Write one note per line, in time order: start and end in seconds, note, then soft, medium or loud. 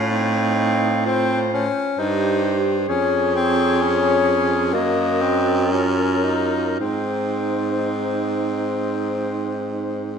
0.00 1.69 A2 medium
0.00 0.12 C#4 medium
0.00 0.10 F4 medium
0.10 1.06 C4 medium
0.10 1.07 D#4 medium
0.10 1.04 F5 medium
1.05 1.40 C4 medium
1.05 1.72 F4 medium
1.05 1.71 C5 medium
1.54 2.01 C#4 medium
1.98 2.85 G2 medium
1.98 2.63 D#4 medium
1.98 2.90 G4 medium
1.98 2.91 C5 medium
2.88 4.76 F2 medium
2.88 3.31 C#4 medium
2.88 4.75 G#4 medium
2.88 4.76 C#5 medium
3.36 3.83 C4 medium
3.82 4.75 C#4 medium
4.73 6.79 F#2 medium
4.73 5.23 A#3 medium
4.73 5.71 F#4 medium
4.73 5.72 D#5 medium
5.21 5.73 C4 medium
5.72 6.25 C#4 medium
5.72 6.82 F4 medium
5.72 6.78 A#4 medium
6.24 6.79 D#4 medium
6.80 10.19 G#2 medium
6.80 10.19 C4 medium
6.80 10.19 D#4 medium
6.80 10.19 C5 medium